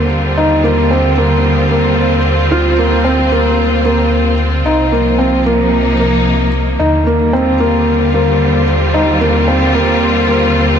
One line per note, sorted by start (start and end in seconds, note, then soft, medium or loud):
0.00 2.49 D#2 medium
0.00 4.66 D3 medium
0.00 4.65 G3 medium
0.00 5.51 C4 medium
0.00 5.51 F4 medium
0.38 0.61 D#4 medium
0.64 0.88 A#3 medium
0.91 1.15 C4 medium
1.17 1.65 A#3 medium
1.71 2.19 A#3 medium
2.51 4.63 D2 medium
2.51 2.75 F4 medium
2.78 3.02 A#3 medium
3.05 3.29 C4 medium
3.32 3.80 A#3 medium
3.85 4.33 A#3 medium
4.66 6.77 C2 medium
4.66 6.80 C3 medium
4.66 4.90 D#4 medium
4.79 8.51 A#3 medium
4.90 6.80 F3 medium
4.90 5.16 A#3 medium
5.19 5.43 C4 medium
5.46 5.94 A#3 medium
5.62 6.80 D#4 medium
5.99 6.47 A#3 medium
6.80 10.79 D#2 medium
6.80 10.79 D3 medium
6.80 7.04 D#4 medium
7.07 7.31 A#3 medium
7.24 10.79 G3 medium
7.33 7.57 C4 medium
7.33 10.79 F4 medium
7.42 10.79 C4 medium
7.60 8.08 A#3 medium
8.14 8.62 A#3 medium
8.94 9.18 D#4 medium
9.21 9.45 A#3 medium
9.48 9.72 C4 medium
9.75 10.23 A#3 medium
10.28 10.76 A#3 medium